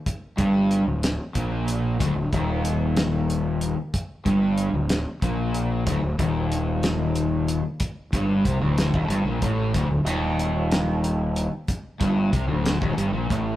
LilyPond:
<<
  \new Staff \with { instrumentName = "Overdriven electric guitar" } { \clef bass \time 6/8 \tempo 4. = 62 r8 g,8. d,8 r16 bes,4 | d,16 d,16 ees,2~ ees,16 r16 | r8 g,8. d,8 r16 bes,4 | d,16 d,16 ees,2~ ees,16 r16 |
r8 g,8 c16 d,8 ees,16 g,16 bes,16 a,8 | d,16 d,16 ees,2~ ees,16 r16 | r8 g,8 c16 d,8 ees,16 g,16 bes,16 a,8 | }
  \new Staff \with { instrumentName = "Fingered electric bass" } { \clef bass \time 6/8 r8 g,,8. d,,8 r16 bes,,4 | d,,16 d,,16 ees,,2~ ees,,16 r16 | r8 g,,8. d,,8 r16 bes,,4 | d,,16 d,,16 ees,,2~ ees,,16 r16 |
r8 g,,8 c,16 d,,8 ees,,16 g,,16 bes,,16 a,,8 | d,,16 d,,16 ees,,2~ ees,,16 r16 | r8 g,,8 c,16 d,,8 ees,,16 g,,16 bes,,16 a,,8 | }
  \new DrumStaff \with { instrumentName = "Drums" } \drummode { \time 6/8 <hh bd>8 <hh bd>8 hh8 <hh sn>8 <hh bd>8 hh8 | <hh bd>8 <hh bd>8 hh8 <hh sn>8 hh8 hh8 | <hh bd>8 <hh bd>8 hh8 <hh sn>8 <hh bd>8 hh8 | <hh bd>8 <hh bd>8 hh8 <hh sn>8 hh8 hh8 |
<hh bd>8 <hh bd>8 <hh bd>8 <hh sn>16 bd16 hh8 <hh bd>8 | <hh bd>8 hh8 hh8 <hh sn>8 hh8 hh8 | <hh bd>8 <hh bd>8 <hh bd>8 <hh sn>16 bd16 hh8 <hh bd>8 | }
>>